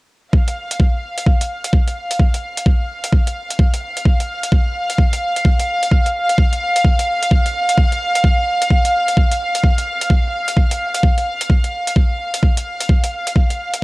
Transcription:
0.33 13.84 F5 medium
0.33 kick loud
0.48 closed hi-hat soft
0.71 closed hi-hat medium
0.80 kick loud
1.18 closed hi-hat medium
1.26 kick loud
1.41 closed hi-hat soft
1.64 closed hi-hat medium
1.73 kick loud
1.87 closed hi-hat soft
2.11 closed hi-hat medium
2.19 kick loud
2.34 closed hi-hat soft
2.57 closed hi-hat medium
2.66 kick loud
3.04 closed hi-hat medium
3.12 kick loud
3.27 closed hi-hat soft
3.50 closed hi-hat medium
3.59 kick loud
3.74 closed hi-hat soft
3.97 closed hi-hat medium
4.05 kick loud
4.20 closed hi-hat soft
4.43 closed hi-hat medium
4.52 kick loud
4.90 closed hi-hat medium
4.98 kick loud
5.13 closed hi-hat soft
5.36 closed hi-hat medium
5.45 kick loud
5.60 closed hi-hat soft
5.83 closed hi-hat medium
5.91 kick loud
6.06 closed hi-hat soft
6.29 closed hi-hat medium
6.38 kick loud
6.53 closed hi-hat soft
6.76 closed hi-hat medium
6.84 kick loud
6.99 closed hi-hat soft
7.22 closed hi-hat medium
7.31 kick loud
7.46 closed hi-hat soft
7.69 closed hi-hat medium
7.78 kick loud
7.92 closed hi-hat soft
8.15 closed hi-hat medium
8.24 kick loud
8.62 closed hi-hat medium
8.71 kick loud
8.85 closed hi-hat soft
9.08 closed hi-hat medium
9.17 kick loud
9.32 closed hi-hat soft
9.55 closed hi-hat medium
9.64 kick loud
9.78 closed hi-hat soft
10.01 closed hi-hat medium
10.10 kick loud
10.48 closed hi-hat medium
10.57 kick loud
10.71 closed hi-hat medium
10.94 closed hi-hat medium
11.03 kick loud
11.18 closed hi-hat medium
11.41 closed hi-hat medium
11.50 kick loud
11.64 closed hi-hat soft
11.87 closed hi-hat medium
11.96 kick loud
12.34 closed hi-hat medium
12.43 kick loud
12.57 closed hi-hat medium
12.80 closed hi-hat medium
12.89 kick loud
13.04 closed hi-hat medium
13.27 closed hi-hat medium
13.36 kick loud
13.50 closed hi-hat soft
13.74 closed hi-hat medium

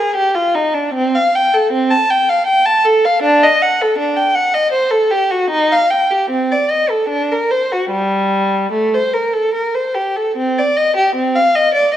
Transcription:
0.00 0.16 G#4 medium
0.16 0.34 G4 medium
0.35 0.54 F4 medium
0.55 0.74 D#4 medium
0.74 0.94 D4 medium
0.94 1.14 C4 medium
1.15 1.34 F5 medium
1.35 1.54 G5 medium
1.54 1.73 A4 medium
1.72 1.91 C4 medium
1.91 2.10 A5 medium
2.10 2.29 G5 medium
2.29 2.48 F5 medium
2.47 2.65 G5 medium
2.65 2.84 A5 medium
2.85 3.04 A4 medium
3.05 3.23 F5 medium
3.23 3.41 D4 medium
3.43 3.61 D#5 medium
3.62 3.80 F#5 medium
3.81 3.99 A4 medium
3.98 4.16 D4 medium
4.17 4.35 G5 medium
4.35 4.53 F#5 medium
4.54 4.72 D#5 medium
4.72 4.91 C5 medium
4.91 5.10 A4 medium
5.11 5.30 G4 medium
5.31 5.51 F#4 medium
5.50 5.70 D#4 medium
5.72 5.91 F5 medium
5.90 6.10 G5 medium
6.10 6.30 G4 medium
6.30 6.49 C4 medium
6.52 6.70 D5 medium
6.71 6.90 D#5 medium
6.90 7.10 A4 soft
7.09 7.29 D4 medium
7.31 7.51 A#4 medium
7.51 7.71 C5 medium
7.72 7.91 F#4 soft
7.91 8.71 G3 medium
8.72 8.92 A3 medium
8.94 9.13 C5 medium
9.13 9.33 A#4 soft
9.33 9.53 A4 soft
9.54 9.74 A#4 soft
9.75 9.95 C5 soft
9.94 10.15 G4 soft
10.16 10.36 A4 soft
10.36 10.55 C4 medium
10.58 10.76 D5 medium
10.76 10.95 D#5 medium
10.97 11.15 G4 medium
11.15 11.34 C4 medium
11.35 11.54 F5 medium
11.55 11.74 D#5 medium
11.74 11.93 D5 medium

